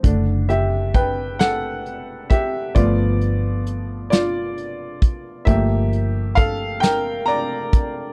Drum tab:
HH |xxxxxx|xxxxxx|xxxxxx|
SD |---o--|---o--|---o--|
BD |o-o--o|o----o|o-o--o|